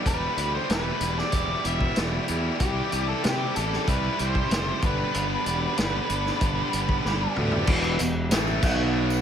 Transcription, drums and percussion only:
0.06 kick loud
0.06 closed hi-hat medium
0.37 closed hi-hat medium
0.70 snare loud
0.70 closed hi-hat medium
1.00 closed hi-hat medium
1.18 snare soft
1.32 kick medium
1.32 closed hi-hat medium
1.65 closed hi-hat medium
1.81 kick medium
1.96 snare loud
1.96 closed hi-hat medium
2.28 closed hi-hat medium
2.60 kick medium
2.60 closed hi-hat medium
2.92 closed hi-hat medium
3.24 snare loud
3.24 closed hi-hat medium
3.56 closed hi-hat medium
3.73 snare soft
3.87 kick medium
3.87 closed hi-hat medium
4.19 closed hi-hat medium
4.35 kick medium
4.51 snare medium
4.51 closed hi-hat medium
4.82 kick loud
4.82 closed hi-hat medium
5.14 closed hi-hat medium
5.46 closed hi-hat medium
5.77 snare loud
5.77 closed hi-hat medium
6.10 closed hi-hat medium
6.26 snare soft
6.41 kick loud
6.41 closed hi-hat medium
6.73 closed hi-hat medium
6.89 kick medium
7.05 snare medium
7.36 mid tom medium
7.51 floor tom medium
7.67 kick loud
7.67 crash loud
7.67 tambourine soft
7.84 tambourine soft
7.99 closed hi-hat medium
7.99 tambourine medium
8.31 snare loud
8.31 closed hi-hat medium
8.31 tambourine medium
8.47 tambourine soft
8.62 kick loud
8.62 tambourine medium
8.62 crash loud
9.10 tambourine medium

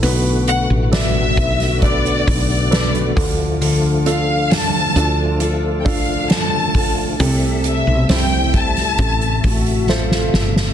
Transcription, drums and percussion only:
0.03 hi-hat pedal medium
0.03 open hi-hat medium
0.48 hi-hat pedal medium
0.48 open hi-hat medium
0.93 snare loud
0.93 hi-hat pedal medium
0.93 open hi-hat medium
1.37 kick medium
1.37 hi-hat pedal medium
1.37 open hi-hat medium
1.60 snare soft
1.60 open hi-hat medium
1.82 kick medium
1.82 hi-hat pedal medium
1.82 open hi-hat loud
2.05 hi-hat pedal medium
2.27 kick loud
2.27 hi-hat pedal medium
2.27 open hi-hat medium
2.50 open hi-hat medium
2.72 snare loud
2.72 hi-hat pedal medium
2.72 open hi-hat loud
2.94 hi-hat pedal medium
3.17 kick loud
3.17 hi-hat pedal medium
3.17 open hi-hat medium
3.62 hi-hat pedal medium
3.62 open hi-hat medium
4.06 hi-hat pedal medium
4.06 open hi-hat medium
4.51 snare loud
4.51 hi-hat pedal medium
4.51 open hi-hat medium
4.96 hi-hat pedal medium
4.96 open hi-hat medium
5.40 hi-hat pedal medium
5.40 open hi-hat medium
5.85 kick loud
5.85 hi-hat pedal medium
5.85 open hi-hat medium
6.30 snare loud
6.30 hi-hat pedal medium
6.30 open hi-hat loud
6.75 kick loud
6.75 hi-hat pedal medium
6.75 open hi-hat medium
7.20 hi-hat pedal medium
7.20 open hi-hat loud
7.64 hi-hat pedal medium
7.64 open hi-hat medium
8.09 snare loud
8.09 hi-hat pedal medium
8.09 open hi-hat medium
8.54 kick medium
8.54 hi-hat pedal medium
8.54 open hi-hat medium
8.77 snare soft
8.77 open hi-hat medium
8.98 kick medium
8.98 hi-hat pedal medium
8.98 open hi-hat medium
9.21 hi-hat pedal medium
9.43 kick loud
9.43 hi-hat pedal medium
9.43 open hi-hat medium
9.66 open hi-hat medium
9.89 snare medium
10.11 snare medium
10.33 snare loud
10.56 snare loud

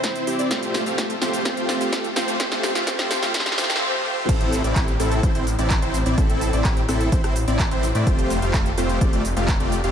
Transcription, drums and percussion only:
0.04 kick loud
0.04 snare medium
0.04 closed hi-hat loud
0.04 shaker medium
0.15 closed hi-hat soft
0.15 shaker soft
0.27 open hi-hat loud
0.39 closed hi-hat soft
0.39 shaker medium
0.51 kick loud
0.51 snare medium
0.51 closed hi-hat medium
0.51 shaker medium
0.63 closed hi-hat soft
0.63 shaker soft
0.74 snare medium
0.74 open hi-hat loud
0.86 closed hi-hat soft
0.86 shaker medium
0.98 kick loud
0.98 snare medium
0.98 closed hi-hat medium
0.98 shaker medium
1.10 closed hi-hat soft
1.10 shaker soft
1.22 snare medium
1.22 open hi-hat loud
1.33 closed hi-hat soft
1.33 shaker medium
1.45 kick loud
1.45 snare medium
1.45 closed hi-hat medium
1.45 shaker medium
1.57 closed hi-hat soft
1.57 shaker soft
1.69 snare medium
1.69 open hi-hat loud
1.81 closed hi-hat soft
1.81 shaker medium
1.93 kick loud
1.93 snare medium
1.93 closed hi-hat medium
1.93 shaker medium
2.04 closed hi-hat soft
2.04 shaker soft
2.16 snare medium
2.16 open hi-hat loud
2.28 closed hi-hat soft
2.28 shaker medium
2.40 kick loud
2.40 snare medium
2.40 closed hi-hat medium
2.40 shaker medium
2.52 snare medium
2.52 closed hi-hat soft
2.52 shaker soft
2.63 snare medium
2.63 open hi-hat loud
2.75 snare medium
2.75 closed hi-hat soft
2.75 shaker medium
2.87 kick loud
2.87 snare medium
2.87 closed hi-hat medium
2.87 shaker medium
2.99 snare medium
2.99 closed hi-hat soft
2.99 shaker soft
3.11 snare loud
3.11 open hi-hat loud
3.23 snare medium
3.23 closed hi-hat soft
3.23 shaker medium
3.34 kick loud
3.34 snare loud
3.34 closed hi-hat medium
3.34 shaker medium
3.40 snare medium
3.46 snare medium
3.46 closed hi-hat soft
3.46 shaker soft
3.52 snare medium
3.58 snare loud
3.58 open hi-hat loud
3.64 snare medium
3.70 snare loud
3.70 closed hi-hat soft
3.70 shaker medium
3.76 snare loud
4.29 kick loud
4.29 closed hi-hat medium
4.29 crash loud
4.29 shaker soft
4.41 closed hi-hat soft
4.52 open hi-hat loud
4.52 shaker medium
4.64 closed hi-hat soft
4.64 shaker soft
4.76 kick loud
4.76 clap loud
4.76 closed hi-hat medium
4.76 shaker soft
4.88 closed hi-hat soft
4.88 shaker soft
5.00 open hi-hat loud
5.00 shaker medium
5.12 closed hi-hat soft
5.12 shaker soft
5.23 kick loud
5.23 closed hi-hat medium
5.23 shaker soft
5.35 closed hi-hat soft
5.35 shaker soft
5.47 open hi-hat loud
5.47 shaker medium
5.59 closed hi-hat soft
5.59 shaker soft
5.70 kick loud
5.70 clap loud
5.70 closed hi-hat medium
5.70 shaker soft
5.82 closed hi-hat soft
5.94 open hi-hat loud
5.94 shaker medium
6.06 closed hi-hat soft
6.06 shaker soft
6.18 kick loud
6.18 closed hi-hat medium
6.18 shaker soft
6.30 closed hi-hat soft
6.41 open hi-hat loud
6.41 shaker medium
6.53 closed hi-hat soft
6.53 shaker soft
6.65 kick loud
6.65 clap loud
6.65 closed hi-hat medium
6.65 shaker soft
6.77 closed hi-hat soft
6.77 shaker soft
6.89 cross-stick medium
6.89 open hi-hat loud
6.89 shaker medium
7.00 closed hi-hat soft
7.00 shaker soft
7.12 kick loud
7.12 closed hi-hat medium
7.12 shaker soft
7.24 cross-stick medium
7.24 closed hi-hat soft
7.24 shaker soft
7.36 open hi-hat loud
7.36 shaker medium
7.48 closed hi-hat soft
7.48 shaker soft
7.59 kick loud
7.59 clap loud
7.59 closed hi-hat medium
7.59 shaker soft
7.71 closed hi-hat soft
7.83 open hi-hat loud
7.83 shaker medium
7.95 closed hi-hat soft
7.95 shaker soft
8.07 kick loud
8.07 closed hi-hat medium
8.07 shaker soft
8.19 closed hi-hat soft
8.30 open hi-hat loud
8.30 shaker medium
8.42 closed hi-hat soft
8.42 shaker soft
8.54 kick loud
8.54 clap loud
8.54 closed hi-hat medium
8.54 shaker soft
8.66 closed hi-hat soft
8.66 shaker soft
8.78 open hi-hat loud
8.78 shaker medium
8.89 closed hi-hat soft
8.89 shaker soft
9.01 kick loud
9.01 closed hi-hat medium
9.01 shaker soft
9.13 closed hi-hat soft
9.13 shaker soft
9.25 open hi-hat loud
9.25 shaker medium
9.37 closed hi-hat soft
9.37 shaker soft
9.48 kick loud
9.48 clap loud
9.48 closed hi-hat medium
9.48 shaker soft
9.60 closed hi-hat soft
9.72 open hi-hat loud
9.72 shaker medium
9.84 closed hi-hat soft
9.84 shaker soft

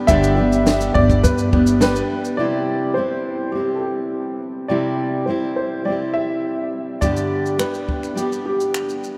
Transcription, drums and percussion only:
0.08 kick loud
0.08 shaker medium
0.24 shaker medium
0.52 shaker soft
0.67 snare loud
0.67 shaker medium
0.81 shaker medium
0.95 kick medium
1.10 kick medium
1.10 shaker soft
1.24 kick medium
1.24 shaker medium
1.38 shaker soft
1.53 kick medium
1.67 shaker medium
1.81 snare loud
1.81 shaker medium
1.96 shaker soft
2.25 shaker soft
7.02 kick medium
7.02 shaker medium
7.17 shaker soft
7.46 shaker soft
7.59 finger snap loud
7.59 shaker soft
7.74 shaker soft
7.89 kick medium
8.03 finger snap soft
8.03 shaker soft
8.18 shaker medium
8.32 shaker soft
8.61 shaker soft
8.74 finger snap medium
8.74 shaker medium
8.89 shaker soft
9.04 shaker soft

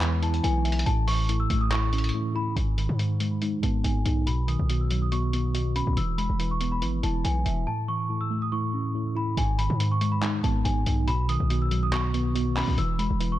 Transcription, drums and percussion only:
0.01 clap loud
0.01 closed hi-hat medium
0.23 closed hi-hat medium
0.34 closed hi-hat medium
0.44 closed hi-hat loud
0.65 closed hi-hat medium
0.72 closed hi-hat medium
0.79 closed hi-hat medium
0.86 closed hi-hat medium
1.08 open hi-hat medium
1.29 closed hi-hat medium
1.50 closed hi-hat medium
1.71 clap loud
1.71 closed hi-hat medium
1.93 closed hi-hat medium
1.98 closed hi-hat medium
2.04 closed hi-hat medium
2.09 closed hi-hat medium
2.57 closed hi-hat medium
2.78 closed hi-hat medium
2.99 closed hi-hat medium
3.20 closed hi-hat medium
3.42 closed hi-hat medium
3.63 closed hi-hat medium
3.84 closed hi-hat medium
4.06 closed hi-hat medium
4.27 closed hi-hat medium
4.48 closed hi-hat medium
4.70 closed hi-hat medium
4.91 closed hi-hat medium
5.12 closed hi-hat medium
5.33 closed hi-hat medium
5.55 closed hi-hat medium
5.76 closed hi-hat medium
5.97 closed hi-hat medium
6.18 closed hi-hat medium
6.40 closed hi-hat medium
6.61 closed hi-hat medium
6.82 closed hi-hat medium
7.03 closed hi-hat medium
7.25 closed hi-hat medium
7.46 closed hi-hat medium
9.37 closed hi-hat medium
9.59 closed hi-hat medium
9.80 closed hi-hat medium
10.01 closed hi-hat medium
10.22 clap loud
10.22 closed hi-hat medium
10.44 closed hi-hat medium
10.65 closed hi-hat medium
10.86 closed hi-hat medium
11.08 closed hi-hat medium
11.29 closed hi-hat medium
11.50 closed hi-hat medium
11.71 closed hi-hat medium
11.93 clap loud
11.93 closed hi-hat medium
12.14 closed hi-hat medium
12.36 closed hi-hat medium
12.57 clap loud
12.57 open hi-hat medium
12.78 closed hi-hat medium
12.99 closed hi-hat medium
13.21 closed hi-hat medium

